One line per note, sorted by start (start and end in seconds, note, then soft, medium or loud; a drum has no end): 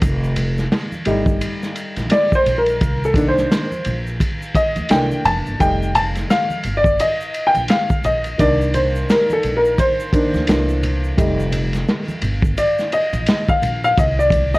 0.02 0.65 F1 loud
0.02 kick loud
0.02 ride medium
0.02 shaker medium
0.24 shaker soft
0.36 ride medium
0.36 high conga soft
0.36 low conga medium
0.36 shaker soft
0.58 snare soft
0.58 shaker soft
0.72 snare loud
0.72 hi-hat pedal soft
0.72 ride medium
0.72 shaker medium
0.92 high conga medium
0.92 shaker soft
1.05 1.38 G1 medium
1.05 2.77 G3 medium
1.05 2.77 A3 soft
1.05 2.77 D#4 medium
1.05 ride medium
1.05 low conga medium
1.05 shaker soft
1.26 kick loud
1.26 shaker soft
1.41 ride medium
1.41 shaker medium
1.63 snare soft
1.63 shaker soft
1.76 ride medium
1.76 shaker soft
1.96 2.10 A#1 medium
1.96 snare soft
1.96 ride soft
1.96 high conga medium
1.96 shaker soft
2.10 2.35 D5 medium
2.10 snare loud
2.10 hi-hat pedal medium
2.10 ride medium
2.10 shaker medium
2.32 2.59 C5 medium
2.32 kick medium
2.32 shaker soft
2.46 2.81 A#1 medium
2.46 ride medium
2.46 low conga medium
2.46 shaker soft
2.58 3.06 A#4 medium
2.66 ride soft
2.66 shaker soft
2.81 3.44 C2 loud
2.81 kick loud
2.81 ride medium
2.81 shaker medium
3.04 3.28 A4 medium
3.04 shaker medium
3.14 3.64 D#3 medium
3.14 3.65 A#3 soft
3.14 3.65 D4 medium
3.14 kick loud
3.14 ride medium
3.14 high conga soft
3.14 low conga medium
3.14 shaker soft
3.28 3.94 C5 medium
3.38 snare soft
3.38 shaker soft
3.52 snare loud
3.52 hi-hat pedal medium
3.52 ride medium
3.52 shaker medium
3.72 high conga medium
3.72 shaker soft
3.84 4.17 A#1 medium
3.84 ride medium
3.84 high conga soft
3.84 low conga medium
3.84 shaker soft
4.07 shaker soft
4.20 kick medium
4.20 ride medium
4.20 shaker medium
4.42 shaker soft
4.54 4.91 D#5 medium
4.54 kick medium
4.54 ride medium
4.54 shaker soft
4.76 4.89 D2 medium
4.76 ride soft
4.76 high conga medium
4.76 shaker soft
4.89 5.09 C2 medium
4.89 5.56 E3 soft
4.89 5.57 A3 soft
4.89 5.57 A#3 soft
4.89 5.57 D4 medium
4.89 5.26 G5 medium
4.89 snare loud
4.89 hi-hat pedal medium
4.89 ride medium
4.89 shaker medium
5.11 shaker soft
5.25 5.44 F1 medium
5.25 5.58 A5 medium
5.25 ride medium
5.25 high conga medium
5.25 low conga medium
5.25 shaker soft
5.46 5.58 G1 medium
5.46 shaker soft
5.59 6.23 F1 medium
5.59 6.60 G3 soft
5.59 6.60 A3 soft
5.59 6.61 D#4 medium
5.59 5.96 G5 loud
5.59 kick loud
5.59 ride medium
5.59 shaker medium
5.82 shaker medium
5.95 6.03 A5 medium
5.95 ride medium
5.95 high conga soft
5.95 low conga medium
5.95 shaker soft
6.15 snare soft
6.15 ride soft
6.15 shaker soft
6.30 6.73 F5 medium
6.30 snare loud
6.30 hi-hat pedal medium
6.30 ride medium
6.30 shaker medium
6.50 high conga medium
6.50 shaker soft
6.63 6.96 G1 medium
6.63 ride medium
6.63 low conga medium
6.63 shaker soft
6.77 7.00 D5 medium
6.84 kick loud
6.84 shaker soft
6.99 7.48 D#5 medium
6.99 ride medium
6.99 shaker medium
7.21 shaker medium
7.34 ride medium
7.34 shaker soft
7.47 7.70 G5 loud
7.55 7.68 A#1 medium
7.55 ride soft
7.55 high conga medium
7.55 shaker soft
7.68 8.02 F5 medium
7.68 snare loud
7.68 hi-hat pedal medium
7.68 ride medium
7.68 shaker medium
7.90 kick loud
7.90 shaker soft
8.04 8.35 A#1 medium
8.04 8.40 D#5 medium
8.04 ride medium
8.04 low conga medium
8.04 shaker medium
8.24 ride soft
8.24 shaker soft
8.38 9.02 C2 loud
8.38 10.12 D#3 medium
8.38 10.12 A#3 soft
8.38 10.13 D4 medium
8.38 8.72 D5 medium
8.38 kick medium
8.38 ride medium
8.38 shaker medium
8.61 shaker soft
8.74 9.06 C5 medium
8.74 ride medium
8.74 high conga medium
8.74 low conga medium
8.74 shaker soft
8.95 shaker soft
9.09 9.31 A#4 medium
9.09 snare loud
9.09 hi-hat pedal medium
9.09 ride medium
9.09 shaker medium
9.30 9.56 A4 medium
9.30 high conga medium
9.30 shaker soft
9.43 9.75 A#1 medium
9.43 ride medium
9.43 low conga medium
9.43 shaker soft
9.57 9.80 A#4 medium
9.65 shaker soft
9.78 11.49 C5 medium
9.78 kick medium
9.78 ride medium
9.78 shaker medium
10.00 shaker medium
10.13 10.45 D#3 medium
10.13 10.45 A#3 medium
10.13 10.45 D4 medium
10.13 kick medium
10.13 ride medium
10.13 shaker soft
10.34 10.47 D2 medium
10.34 snare soft
10.34 high conga medium
10.34 shaker soft
10.47 11.11 C2 medium
10.47 11.14 E3 medium
10.47 11.15 A3 soft
10.47 11.15 A#3 medium
10.47 11.15 D4 medium
10.47 snare loud
10.47 hi-hat pedal medium
10.47 ride medium
10.47 shaker medium
10.69 shaker soft
10.83 ride medium
10.83 low conga medium
10.83 shaker soft
11.04 shaker soft
11.18 11.81 F1 loud
11.18 12.18 G3 soft
11.18 12.19 A3 soft
11.18 12.19 D#4 medium
11.18 kick loud
11.18 ride medium
11.18 shaker medium
11.40 shaker medium
11.53 ride medium
11.53 high conga soft
11.53 low conga medium
11.53 shaker soft
11.73 snare soft
11.73 ride soft
11.73 shaker medium
11.88 snare loud
11.88 hi-hat pedal soft
11.88 ride medium
11.88 shaker medium
12.08 high conga medium
12.08 shaker soft
12.22 12.54 G1 medium
12.22 ride medium
12.22 low conga medium
12.22 shaker soft
12.42 kick loud
12.42 shaker soft
12.58 12.94 D5 medium
12.58 ride medium
12.58 shaker medium
12.79 snare soft
12.79 shaker soft
12.92 13.50 D#5 medium
12.92 ride medium
12.92 shaker soft
13.13 13.26 A#1 loud
13.13 ride soft
13.13 high conga medium
13.13 shaker soft
13.26 snare loud
13.26 hi-hat pedal medium
13.26 ride medium
13.26 shaker medium
13.48 13.83 F5 medium
13.48 kick loud
13.48 shaker soft
13.62 13.93 A#1 medium
13.62 ride medium
13.62 low conga medium
13.62 shaker soft
13.84 13.97 F5 medium
13.84 shaker soft
13.97 14.59 C2 loud
13.97 14.19 D#5 medium
13.97 kick loud
13.97 ride medium
13.97 shaker medium
14.19 14.54 D5 medium
14.19 shaker medium
14.30 kick loud
14.30 ride medium
14.30 high conga medium
14.30 low conga medium
14.30 shaker soft
14.54 14.59 D#5 medium
14.54 snare soft
14.54 shaker soft